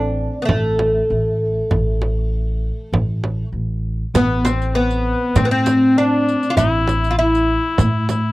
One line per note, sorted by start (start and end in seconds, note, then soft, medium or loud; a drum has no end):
0.00 0.26 A1 medium
0.00 0.43 D4 medium
0.42 3.48 A3 medium
0.42 0.45 B3 medium
0.49 0.99 A1 medium
0.49 frame drum medium
0.79 frame drum medium
1.10 1.59 A1 medium
1.71 2.69 A1 medium
1.71 frame drum medium
2.02 frame drum medium
2.92 3.42 A1 medium
2.92 frame drum medium
3.24 frame drum medium
3.52 4.02 A1 medium
4.14 5.12 A1 medium
4.14 4.46 B3 medium
4.14 4.48 B3 medium
4.14 riq medium
4.14 frame drum medium
4.45 4.76 C4 medium
4.45 4.69 C4 medium
4.45 riq medium
4.45 frame drum medium
4.62 riq soft
4.69 4.76 C4 soft
4.75 5.38 B3 medium
4.91 riq soft
5.36 6.33 A2 medium
5.36 5.44 C4 medium
5.36 5.50 C4 medium
5.36 riq medium
5.36 frame drum medium
5.45 5.51 B3 medium
5.50 5.99 C4 medium
5.66 riq medium
5.66 frame drum medium
5.98 6.56 D4 medium
5.98 6.50 D4 medium
5.98 riq soft
6.28 riq soft
6.43 riq soft
6.50 6.57 F4 medium
6.57 7.55 A1 medium
6.57 7.14 E4 loud
6.57 7.10 E4 medium
6.57 riq medium
6.57 frame drum medium
6.88 riq soft
6.88 frame drum medium
7.04 riq soft
7.11 7.18 F4 medium
7.18 8.06 E4 loud
7.18 8.32 E4 medium
7.35 riq soft
7.78 8.32 A2 medium
7.78 riq medium
7.78 frame drum medium
8.09 8.32 E4 medium
8.09 riq soft
8.09 frame drum medium